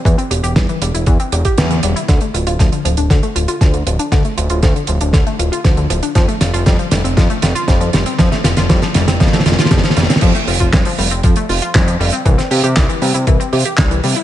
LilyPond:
<<
  \new Staff \with { instrumentName = "Synth arpeggio sound" } { \clef bass \time 4/4 \key f \major \tempo 4 = 118 e16 c'16 g'16 g'16 g16 e16 g16 e'16 e16 c'16 g'16 g'16 g16 e16 g16 e'16 | d16 a16 f'16 f'16 f16 d16 f16 d'16 d16 a16 f'16 f'16 f16 d16 f16 d'16 | d16 a16 f'16 f'16 f16 d16 f16 d'16 d16 a16 f'16 f'16 f16 d16 f16 d'16 | f16 a16 f'16 f'16 g16 f16 g16 c'16 f16 a16 f'16 f'16 g16 f16 g16 c'16 |
f16 a16 f'16 f'16 g16 f16 g16 c'16 f16 a16 f'16 f'16 g16 f16 g16 c'16 | f16 a16 f'16 f'16 g16 f16 g16 c'16 f16 a16 f'16 f'16 g16 f16 g16 c'16 | e16 c'16 g'16 g'16 g16 e16 g16 e'16 e16 c'16 g'16 g'16 g16 e16 g16 e'16 | }
  \new Staff \with { instrumentName = "Analog synth bass" } { \clef bass \time 4/4 \key f \major e,16 r16 e,,16 e,,16 e,16 r16 e,,16 e,,16 e,16 r16 e,,16 r16 e,8 e,,16 r16 | d,16 r16 d,,16 d,,16 d,16 r16 d,,16 d,,16 d,16 r16 d,,16 r16 d,8 d,,16 r16 | d,16 r16 d,,16 d,,16 d,16 r16 d,,16 d,,16 d,16 r16 d,,16 r16 d,8 d,,16 r16 | f,16 r16 f,,16 f,,16 f,16 r16 f,,16 f,,16 f,16 r16 f,,16 r16 f,8 f,,16 r16 |
f,16 r16 f,,16 f,,16 f,16 r16 f,,16 f,,16 f,8 f,,16 r16 f,16 r16 f,,16 r16 | f,16 r16 f,,16 f,,16 f,16 r16 f,,16 f,,16 f,16 r16 f,,16 r16 f,8 f,,16 r16 | c,16 r16 c16 c16 c,16 r16 c16 c16 c,16 r16 c16 r16 c,8 c16 r16 | }
  \new DrumStaff \with { instrumentName = "Drums" } \drummode { \time 4/4 <hh bd>16 hh16 hh16 hh16 <hh bd sn>16 hh16 hh16 hh16 <hh bd>16 hh16 hh16 <hh bd>16 <hh sn>16 hh16 hh16 hh16 | <hh bd sn>16 hh16 hh16 hh16 <hh bd sn>16 hh16 hh16 hh16 <hh bd sn>16 hh16 hh16 hh16 <hh bd sn>16 hh16 hh16 hh16 | <hh bd sn>16 hh16 hh16 hh16 <hh bd sn>16 hh16 hh16 hh16 <hh bd sn>16 hh16 hh16 hh16 <hh bd sn>16 hh16 hh16 hh16 | <hh bd sn>16 hh16 <hh sn>16 hh16 <hh bd sn>16 hh16 <hh sn>16 hh16 <hh bd sn>16 hh16 <hh sn>16 hh16 <hh bd sn>16 hh16 <hh sn>16 hh16 |
<hh bd sn>16 <hh sn>16 <hh sn>16 <hh sn>16 <hh bd sn>16 <hh sn>16 <hh sn>16 <hh sn>16 <hh bd sn>32 sn32 <hh sn>32 sn32 <hh sn>32 sn32 <hh sn>32 sn32 <hh bd sn>32 sn32 <hh sn>32 sn32 <hh sn>32 sn32 <hh sn>32 sn32 | <cymc hh bd>16 hh16 hho16 <hh bd>16 <hc hh bd sn>16 hho16 hho16 hh16 <hh bd>16 hh16 hho16 hh16 <hc hh bd sn>16 hh16 hho16 hh16 | <hh bd>16 <hh sn>16 hho16 hh16 <hc hh bd sn>16 hh16 hho16 hh16 <hh bd>16 hh16 hho16 hh16 <hc hh bd sn>16 hh16 hho16 hh16 | }
>>